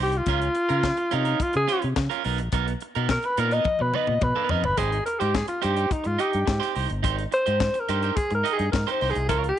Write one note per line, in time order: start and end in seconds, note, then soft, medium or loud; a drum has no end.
0.00 0.19 C2 medium
0.00 0.13 D#4 medium
0.00 0.12 G4 medium
0.00 0.18 G4 medium
0.00 0.11 C5 medium
0.12 muted clean electric guitar stroke soft
0.12 closed hi-hat soft
0.17 1.16 F4 loud
0.26 0.48 C#2 medium
0.26 0.47 C#4 medium
0.26 0.40 F4 medium
0.26 0.40 A#4 loud
0.26 kick loud
0.26 closed hi-hat medium
0.41 muted clean electric guitar stroke soft
0.41 closed hi-hat soft
0.55 muted clean electric guitar stroke soft
0.55 closed hi-hat medium
0.69 0.91 C#3 medium
0.69 0.83 C#4 soft
0.69 0.83 F4 soft
0.69 0.84 A#4 medium
0.69 closed hi-hat soft
0.83 muted clean electric guitar stroke medium
0.83 kick medium
0.83 snare loud
0.83 clap medium
0.97 muted clean electric guitar stroke soft
0.97 closed hi-hat soft
1.11 1.33 C3 medium
1.11 1.25 C#4 medium
1.11 1.44 D#4 medium
1.11 1.25 F4 loud
1.11 1.24 A#4 medium
1.11 closed hi-hat medium
1.25 1.38 C#4 medium
1.25 1.39 F4 medium
1.25 1.39 A#4 medium
1.25 closed hi-hat medium
1.40 1.55 F4 medium
1.40 muted clean electric guitar stroke soft
1.40 muted fingered electric bass stroke medium
1.40 kick loud
1.40 closed hi-hat medium
1.53 1.65 C#3 medium
1.53 1.81 G#4 loud
1.53 muted clean electric guitar stroke soft
1.53 closed hi-hat soft
1.67 1.87 C#4 medium
1.67 1.82 F4 medium
1.67 1.82 C5 loud
1.67 closed hi-hat medium
1.82 1.94 C3 medium
1.82 muted clean electric guitar stroke soft
1.82 closed hi-hat soft
1.96 2.07 C#3 loud
1.96 muted clean electric guitar stroke soft
1.96 kick loud
1.96 snare loud
1.96 clap medium
2.10 2.24 C#4 medium
2.10 2.24 F4 medium
2.10 2.24 A#4 medium
2.10 closed hi-hat soft
2.24 2.40 B1 loud
2.24 2.40 B3 medium
2.24 2.39 D#4 medium
2.24 2.38 A#4 medium
2.24 open hi-hat medium
2.38 2.50 A#1 medium
2.38 muted clean electric guitar stroke soft
2.38 closed hi-hat medium
2.52 2.73 B1 medium
2.52 2.72 B3 medium
2.52 2.67 D#4 medium
2.52 2.66 A#4 medium
2.52 kick loud
2.52 closed hi-hat medium
2.67 muted clean electric guitar stroke soft
2.67 closed hi-hat soft
2.81 muted clean electric guitar stroke soft
2.81 closed hi-hat medium
2.95 3.17 B2 medium
2.95 3.09 B3 medium
2.95 3.10 D#4 medium
2.95 3.10 A#4 medium
2.95 closed hi-hat soft
3.09 3.27 A#4 medium
3.09 muted clean electric guitar stroke soft
3.09 kick medium
3.09 snare loud
3.09 clap medium
3.23 3.41 B4 medium
3.23 muted clean electric guitar stroke medium
3.23 closed hi-hat soft
3.37 3.58 A#2 medium
3.37 3.52 B3 medium
3.37 3.51 D#4 medium
3.37 3.51 A#4 loud
3.37 3.55 A#4 loud
3.37 closed hi-hat medium
3.51 3.65 B3 medium
3.51 3.66 D#4 medium
3.51 3.66 A#4 medium
3.51 3.83 D#5 loud
3.51 closed hi-hat soft
3.65 muted fingered electric bass stroke medium
3.65 muted clean electric guitar stroke soft
3.65 kick loud
3.65 high tom medium
3.79 3.91 B2 medium
3.79 3.97 B4 medium
3.79 muted clean electric guitar stroke soft
3.79 high tom soft
3.94 4.13 B3 medium
3.94 4.08 D#4 medium
3.94 4.07 B4 medium
3.94 4.25 D#5 medium
3.94 mid tom medium
4.07 4.19 A#2 medium
4.07 muted clean electric guitar stroke soft
4.07 mid tom medium
4.21 4.32 B2 loud
4.21 4.52 B4 medium
4.21 muted clean electric guitar stroke soft
4.21 kick loud
4.21 mid tom medium
4.36 4.49 B3 medium
4.36 4.50 D#4 medium
4.36 4.50 A#4 medium
4.49 4.61 F2 medium
4.49 4.65 B3 medium
4.49 4.64 D#4 medium
4.49 4.62 A#4 medium
4.49 4.67 D#5 medium
4.49 floor tom loud
4.63 4.75 G1 medium
4.63 4.79 B4 loud
4.63 muted clean electric guitar stroke soft
4.63 floor tom loud
4.77 4.99 G#1 loud
4.77 4.97 D#4 medium
4.77 4.91 G4 medium
4.77 5.05 G#4 medium
4.77 4.91 C5 medium
4.77 kick loud
4.77 closed hi-hat medium
4.92 muted clean electric guitar stroke soft
4.92 closed hi-hat soft
5.06 5.21 A#4 medium
5.06 muted clean electric guitar stroke soft
5.06 closed hi-hat medium
5.19 5.42 G#2 medium
5.19 5.33 D#4 medium
5.19 5.37 G4 medium
5.19 5.34 G4 medium
5.19 5.34 C5 medium
5.19 closed hi-hat soft
5.34 5.48 G#4 medium
5.34 muted clean electric guitar stroke soft
5.34 kick medium
5.34 snare loud
5.34 clap loud
5.48 5.65 F4 medium
5.48 muted clean electric guitar stroke soft
5.48 closed hi-hat medium
5.62 5.85 G2 loud
5.62 5.76 D#4 medium
5.62 5.76 G4 medium
5.62 5.93 G4 medium
5.62 5.75 C5 loud
5.62 closed hi-hat medium
5.76 5.90 D#4 soft
5.76 5.89 G4 medium
5.76 5.90 C5 medium
5.76 closed hi-hat soft
5.91 6.08 D#4 medium
5.91 muted clean electric guitar stroke soft
5.91 muted fingered electric bass stroke soft
5.91 kick loud
5.91 closed hi-hat medium
6.04 6.16 G#2 medium
6.04 6.22 F4 medium
6.04 muted clean electric guitar stroke soft
6.04 closed hi-hat soft
6.19 6.38 D#4 medium
6.19 6.32 G4 medium
6.19 6.76 G4 medium
6.19 6.32 D#5 medium
6.19 closed hi-hat medium
6.33 6.45 G2 medium
6.33 muted clean electric guitar stroke soft
6.33 closed hi-hat soft
6.46 6.58 G#2 loud
6.46 muted clean electric guitar stroke medium
6.46 kick loud
6.46 snare loud
6.46 clap medium
6.60 6.74 D#4 medium
6.60 6.74 G4 medium
6.60 6.75 C5 loud
6.60 snare soft
6.60 closed hi-hat soft
6.75 6.87 C2 medium
6.75 6.91 D#4 medium
6.75 6.89 G4 medium
6.75 6.88 C5 medium
6.75 open hi-hat medium
6.89 7.04 G1 medium
6.89 muted clean electric guitar stroke soft
6.89 closed hi-hat medium
7.03 7.25 G#1 loud
7.03 7.23 D#4 medium
7.03 7.17 G4 medium
7.03 7.16 C5 medium
7.03 kick loud
7.03 closed hi-hat loud
7.17 muted clean electric guitar stroke soft
7.17 closed hi-hat soft
7.32 7.81 C5 loud
7.32 muted clean electric guitar stroke soft
7.32 closed hi-hat medium
7.46 7.68 G#2 loud
7.46 7.59 D#4 soft
7.46 7.59 G4 soft
7.46 7.59 C5 medium
7.46 closed hi-hat soft
7.60 muted clean electric guitar stroke soft
7.60 kick loud
7.60 snare loud
7.60 clap medium
7.74 muted clean electric guitar stroke soft
7.74 closed hi-hat medium
7.80 8.17 A#4 loud
7.89 8.10 G2 loud
7.89 8.03 D#4 medium
7.89 8.03 G4 medium
7.89 8.02 C5 medium
7.89 closed hi-hat medium
8.02 8.16 D#4 medium
8.02 8.16 G4 medium
8.02 8.17 C5 medium
8.02 closed hi-hat soft
8.16 8.34 G#4 medium
8.16 muted fingered electric bass stroke soft
8.16 muted clean electric guitar stroke medium
8.16 kick loud
8.16 closed hi-hat medium
8.30 8.42 G#2 medium
8.30 muted clean electric guitar stroke soft
8.30 closed hi-hat soft
8.35 8.54 A#4 loud
8.44 8.64 D#4 medium
8.44 8.58 G4 medium
8.44 8.58 D#5 medium
8.44 closed hi-hat medium
8.53 8.71 G#4 medium
8.58 8.70 G2 medium
8.58 muted clean electric guitar stroke soft
8.58 closed hi-hat soft
8.72 8.84 G#2 loud
8.72 8.92 A#4 medium
8.72 muted clean electric guitar stroke soft
8.72 kick loud
8.72 snare loud
8.72 clap medium
8.87 9.00 D#4 medium
8.87 9.01 G4 medium
8.87 9.01 C5 medium
8.87 9.12 C5 medium
8.87 closed hi-hat soft
9.01 9.12 C2 medium
9.01 9.17 D#4 medium
9.01 9.15 G4 medium
9.01 9.14 C5 medium
9.01 open hi-hat medium
9.10 9.28 G#4 medium
9.15 9.29 C2 medium
9.15 muted clean electric guitar stroke soft
9.15 closed hi-hat medium
9.29 9.51 C#2 loud
9.29 9.50 F4 medium
9.29 9.47 A#4 loud
9.29 9.43 A#4 medium
9.29 9.42 C#5 medium
9.29 kick loud
9.29 closed hi-hat medium
9.44 muted clean electric guitar stroke medium
9.44 closed hi-hat soft
9.49 9.59 G#4 medium